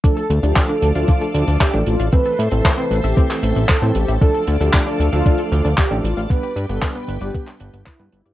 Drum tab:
HH |xxxxxxxxxxxxxxxx|xxxxxxxxxxxxxxxx|xxxxxxxxxxxxxxxx|xxxxxxxxxxxxxxxx|
CP |----x-------x---|----x----x--x---|----x-------x---|----x----x--x---|
BD |o---o---o---o---|o---o---o---o---|o---o---o---o---|o---o---o---o---|